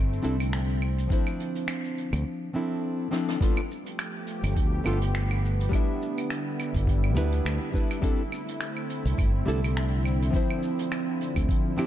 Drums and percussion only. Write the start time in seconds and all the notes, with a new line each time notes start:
0.13 shaker
0.24 closed hi-hat
0.40 closed hi-hat, claves, shaker
0.53 finger snap, closed hi-hat, shaker
0.69 shaker
0.82 claves
0.98 closed hi-hat, shaker
1.10 kick, closed hi-hat, shaker
1.27 claves, shaker
1.40 closed hi-hat
1.56 closed hi-hat, shaker
1.68 finger snap, closed hi-hat, claves, shaker
1.85 shaker
1.98 closed hi-hat
2.13 closed hi-hat, claves, shaker
3.12 cross-stick
3.29 cross-stick
3.41 kick, closed hi-hat, shaker
3.57 claves
3.71 shaker
3.86 closed hi-hat, shaker
3.99 finger snap, closed hi-hat, claves, shaker
4.27 closed hi-hat, shaker
4.44 closed hi-hat, claves, shaker
4.56 kick, closed hi-hat, shaker
4.86 closed hi-hat, claves, shaker
5.01 closed hi-hat, shaker
5.15 finger snap, closed hi-hat, shaker
5.31 claves
5.45 shaker
5.60 closed hi-hat, shaker
5.72 kick, closed hi-hat, claves, shaker
6.03 shaker
6.17 closed hi-hat, claves, shaker
6.30 finger snap, closed hi-hat, shaker
6.59 closed hi-hat, claves, shaker
6.74 kick, closed hi-hat, shaker
6.87 kick, closed hi-hat, shaker
7.04 claves
7.17 closed hi-hat, shaker
7.32 closed hi-hat, shaker
7.46 finger snap, closed hi-hat, claves, shaker
7.74 kick, shaker
7.90 closed hi-hat, claves, shaker
8.03 kick, closed hi-hat, shaker
8.32 claves, shaker
8.48 closed hi-hat, shaker
8.61 finger snap, closed hi-hat, shaker
8.77 claves
8.90 closed hi-hat, shaker
9.06 closed hi-hat, shaker
9.18 kick, closed hi-hat, claves, shaker
9.48 closed hi-hat, shaker
9.64 closed hi-hat, claves, shaker
9.77 finger snap, closed hi-hat, shaker
10.05 claves, shaker
10.22 closed hi-hat, shaker
10.34 kick, closed hi-hat, shaker
10.50 claves
10.63 shaker
10.79 closed hi-hat, shaker
10.92 finger snap, closed hi-hat, claves, shaker
11.21 closed hi-hat, shaker
11.36 kick, closed hi-hat, claves, shaker
11.49 kick, closed hi-hat, shaker
11.78 closed hi-hat, claves, shaker